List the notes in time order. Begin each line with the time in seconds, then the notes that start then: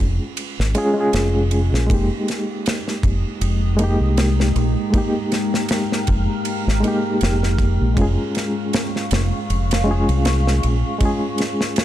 Already playing: G#3 C#4 F4 G#4
0.00 F1
0.37 ride
0.59 G#1, snare
0.75 G#3 C#4 F4 G#4, ride
0.94 G#3 C#4
0.98 F4 G#4
1.13 F1, snare, ride
1.51 ride
1.73 A#1, snare
1.86 F1 G#3 A#3 G5 A#5 D#6, kick
1.90 D#4 G4, ride
2.28 snare, ride
2.66 snare, ride
2.88 snare
3.03 F1, kick, ride
3.41 F1, ride
3.77 G#3 A#3, ride
3.81 D#4 G4
4.00 C2
4.17 snare, ride
4.40 snare
4.56 A#1, ride
4.90 G#3 A#3 F6, kick, ride
4.95 D#4 G4
5.32 snare, ride
5.54 snare
5.69 snare, ride
5.92 snare
6.07 F1, kick, ride
6.45 ride
6.67 G#1, snare
6.80 G#3 A#3, ride
6.85 D#4 G4
7.21 F1, snare, ride
7.43 snare
7.58 kick, ride
7.81 A#1
7.94 F1 G#3 C#4 F5 C#6, kick, ride
7.99 F4 G#4
8.35 snare, ride
8.73 snare, ride
8.96 snare
9.11 F1, snare, ride
9.50 F1, ride
9.71 snare, ride
9.84 G#3 C#4
9.88 F4 G#4
10.09 C2, ride
10.25 snare, ride
10.47 snare
10.63 A#1, ride
10.98 G#3 C#4, kick, ride
11.03 F4 G#4
11.38 snare, ride
11.61 snare
11.76 snare, ride